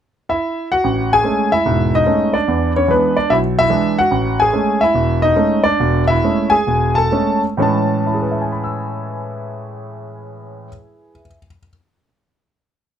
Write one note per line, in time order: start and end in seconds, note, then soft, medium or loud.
0.29 0.67 E4 medium
0.29 0.67 E5 medium
0.72 1.09 F#4 medium
0.72 1.12 F#5 medium
0.84 1.19 A1 medium
1.13 1.50 G#4 medium
1.13 1.50 G#5 loud
1.24 1.52 G#3 soft
1.24 1.52 A3 soft
1.24 1.53 C#4 soft
1.52 1.90 E4 medium
1.52 1.94 E5 medium
1.66 2.01 E1 medium
1.66 2.01 G#2 medium
1.95 2.32 D#4 medium
1.95 2.36 D#5 medium
2.06 2.34 G#3 soft
2.06 2.35 A3 soft
2.06 2.35 C#4 medium
2.34 2.72 D4 medium
2.34 2.72 D5 medium
2.48 2.83 E2 medium
2.76 2.90 C#4 medium
2.76 2.90 C#5 medium
2.88 3.17 E3 soft
2.88 3.17 G#3 soft
2.88 3.15 B3 medium
2.88 3.17 D4 medium
2.88 3.17 B4 medium
3.17 3.31 D4 medium
3.17 3.31 D5 medium
3.30 3.65 B1 medium
3.30 3.38 E4 medium
3.30 3.36 E5 medium
3.59 3.96 E4 medium
3.59 3.96 E5 loud
3.70 3.98 E3 medium
3.70 3.98 G#3 soft
3.70 3.99 D4 medium
3.99 4.37 F#4 medium
3.99 4.40 F#5 medium
4.11 4.47 A1 medium
4.40 4.79 G#4 medium
4.40 4.81 G#5 medium
4.53 4.81 G#3 soft
4.53 4.81 A3 soft
4.53 4.81 C#4 soft
4.81 5.20 E4 medium
4.81 5.19 E5 medium
4.94 5.31 E1 medium
5.22 5.62 D#4 medium
5.22 5.61 D#5 medium
5.36 5.65 G#3 soft
5.36 5.65 A3 soft
5.36 5.65 C#4 medium
5.64 6.05 D4 medium
5.64 6.04 D5 medium
5.80 6.17 E1 medium
6.08 6.49 E4 medium
6.08 6.52 E5 medium
6.24 6.53 G#3 soft
6.24 6.53 A3 soft
6.24 6.53 C#4 medium
6.50 6.93 G#4 medium
6.50 6.97 G#5 medium
6.67 7.06 E1 medium
6.95 7.40 A4 medium
6.95 7.39 A5 medium
7.12 7.44 G#3 soft
7.12 7.44 A3 soft
7.12 7.44 C#4 medium
7.57 10.67 A2 medium
7.57 10.68 E3 medium
7.57 10.68 G#3 medium
7.57 10.69 C#4 medium
7.62 10.68 A5 medium
8.06 11.12 E4 soft
8.14 11.20 G#4 soft
8.22 11.27 B4 soft
8.31 11.37 E5 soft
8.42 11.47 G#5 soft
8.52 11.58 B5 soft
8.64 11.69 E6 soft